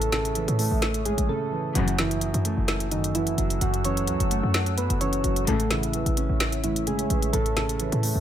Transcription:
Already playing: A1 A2 C#3 E3 A3 C#4 A4 C#5 E5 D#6
0.02 closed hi-hat
0.12 C#3 A3 A4, snare, closed hi-hat
0.25 closed hi-hat
0.35 E3, closed hi-hat
0.48 A2, closed hi-hat
0.59 A3, open hi-hat
0.71 A1
0.82 snare, closed hi-hat
0.94 closed hi-hat
1.05 A2 G#3 G#4, closed hi-hat
1.18 A1, closed hi-hat
1.29 C#3 A3 A4
1.52 E3
1.75 F#1 F#2 A2 C#3 E3 F#3 F#4 A4 F#5 E6, closed hi-hat
1.88 closed hi-hat
1.98 E3 E4, snare, closed hi-hat
2.11 closed hi-hat
2.21 F#3, closed hi-hat
2.34 F#2, closed hi-hat
2.45 A3, closed hi-hat
2.57 F#1
2.68 snare, closed hi-hat
2.80 closed hi-hat
2.91 F#2 D#3 D#4, closed hi-hat
3.04 closed hi-hat
3.15 E3 E4, closed hi-hat
3.27 closed hi-hat
3.38 F#1 F#3, closed hi-hat
3.50 closed hi-hat
3.61 F#1 F#2 F#3 F#4, closed hi-hat
3.74 closed hi-hat
3.84 E3 C#4 C#5, closed hi-hat
3.97 closed hi-hat
4.07 C#2 F#3, closed hi-hat
4.20 F#1, closed hi-hat
4.31 A3, closed hi-hat
4.43 F#2
4.54 snare, closed hi-hat
4.66 closed hi-hat
4.78 F#2 B3 B4, closed hi-hat
4.90 F#1, closed hi-hat
5.01 E3 C#4 C#5, closed hi-hat
5.13 closed hi-hat
5.24 F#1 F#3, closed hi-hat
5.36 closed hi-hat
5.47 A1 A2 C#3 E3 A3 A4 C#5 E5, closed hi-hat
5.60 closed hi-hat
5.70 C#3 E3 E4, snare, closed hi-hat
5.83 closed hi-hat
5.93 E3, closed hi-hat
6.06 A1, closed hi-hat
6.17 C#4, closed hi-hat
6.29 A1
6.40 snare, closed hi-hat
6.52 closed hi-hat
6.64 A2 E3 E4, closed hi-hat
6.76 closed hi-hat
6.87 C#3 G#3 G#4, closed hi-hat
6.99 closed hi-hat
7.10 A1 E3, closed hi-hat
7.22 closed hi-hat
7.33 A1 A2 A3 A4, closed hi-hat
7.46 closed hi-hat
7.56 C#3 A3 A4, snare, closed hi-hat
7.69 closed hi-hat
7.80 E3, closed hi-hat
7.92 A2, closed hi-hat
8.03 A3, open hi-hat
8.15 A1

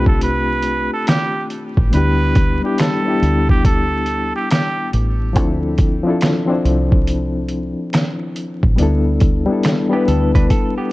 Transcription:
Already playing: C2 A3 C4 D4 F4 G4
0.06 A4, kick
0.21 B4, closed hi-hat
0.62 closed hi-hat
0.93 A4
1.07 G4, finger snap, snare, closed hi-hat
1.50 closed hi-hat
1.77 A1, kick
1.91 D2 G3 B3 D4 B4, closed hi-hat
1.95 E4 G4
2.35 kick, closed hi-hat
2.60 G3 B3 D4
2.64 E4 G4
2.78 A4, finger snap, snare, closed hi-hat
3.03 G3 B3 D4
3.08 E4 G4
3.22 D2, closed hi-hat
3.49 G4, kick
3.65 A4, kick, closed hi-hat
4.06 closed hi-hat
4.36 G4
4.50 G4, finger snap, snare, closed hi-hat
4.93 A1, closed hi-hat
5.33 D2 F3 C4 D4, kick, closed hi-hat
5.38 E4 A4
5.78 kick, closed hi-hat
6.03 F3 C4 D4
6.08 E4 A4
6.21 finger snap, snare, closed hi-hat
6.46 F3 C4 D4
6.51 E4 C5
6.65 C2, closed hi-hat
6.92 kick
7.07 closed hi-hat
7.49 closed hi-hat
7.93 finger snap, snare, closed hi-hat
8.36 closed hi-hat
8.63 A1, kick
8.76 D2 G3 B3 D4, closed hi-hat
8.81 E4 A4
9.20 kick, closed hi-hat
9.46 G3 B3 D4
9.51 E4 A4
9.63 finger snap, snare, closed hi-hat
9.89 G3 B3 D4
9.93 E4 G4 B4
10.08 D2 A4, closed hi-hat
10.35 D4 B4, kick, closed hi-hat
10.50 A4, kick, closed hi-hat
10.78 B3 G4

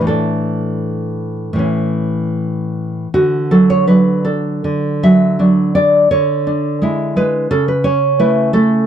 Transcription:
Already playing: A2
0.01 E3
0.07 D4 A4
1.53 A2 E3
1.59 C#4
3.14 D3 F#4
3.51 F#3 A4
3.70 C#5
3.87 F#3 D4 B4
4.25 D4 A4
4.64 D3
5.03 F#3 E5
5.39 F#3 D4
5.75 D4 D5
6.11 D3 C#5
6.47 D4
6.82 G#3 E4
7.16 G#3 B4
7.51 C#3 A4
7.68 B4
7.84 C#4 C#5
8.19 A3 E4 B4
8.53 A3 A4

